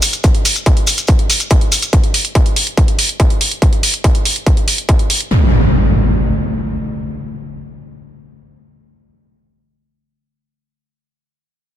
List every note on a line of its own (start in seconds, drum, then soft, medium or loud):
0.02 open hi-hat medium
0.02 maracas medium
0.13 closed hi-hat soft
0.13 maracas soft
0.24 kick loud
0.24 closed hi-hat medium
0.24 maracas soft
0.35 closed hi-hat soft
0.45 open hi-hat loud
0.45 maracas medium
0.56 closed hi-hat soft
0.56 maracas medium
0.66 kick loud
0.66 closed hi-hat medium
0.66 maracas soft
0.77 closed hi-hat soft
0.87 open hi-hat medium
0.87 maracas medium
0.97 closed hi-hat soft
0.97 maracas soft
1.07 kick loud
1.07 closed hi-hat medium
1.07 maracas soft
1.19 closed hi-hat soft
1.30 open hi-hat loud
1.30 maracas medium
1.40 closed hi-hat soft
1.40 maracas soft
1.50 kick loud
1.50 closed hi-hat medium
1.50 maracas soft
1.61 closed hi-hat soft
1.72 open hi-hat medium
1.72 maracas medium
1.82 closed hi-hat soft
1.82 maracas medium
1.93 kick loud
1.93 closed hi-hat medium
2.04 closed hi-hat soft
2.14 open hi-hat loud
2.25 closed hi-hat soft
2.35 kick loud
2.35 closed hi-hat medium
2.46 closed hi-hat soft
2.56 open hi-hat medium
2.67 closed hi-hat soft
2.77 kick loud
2.77 closed hi-hat medium
2.88 closed hi-hat soft
2.99 open hi-hat loud
3.09 closed hi-hat soft
3.20 kick loud
3.20 closed hi-hat medium
3.30 closed hi-hat soft
3.41 open hi-hat medium
3.51 closed hi-hat soft
3.62 kick loud
3.62 closed hi-hat medium
3.73 closed hi-hat soft
3.83 open hi-hat loud
3.94 closed hi-hat soft
4.04 kick loud
4.04 closed hi-hat medium
4.15 closed hi-hat soft
4.25 open hi-hat medium
4.36 closed hi-hat soft
4.46 kick loud
4.46 closed hi-hat medium
4.57 closed hi-hat soft
4.68 open hi-hat loud
4.78 closed hi-hat soft
4.89 kick loud
4.89 closed hi-hat medium
4.99 closed hi-hat soft
5.10 open hi-hat medium
5.20 closed hi-hat soft
5.31 impact medium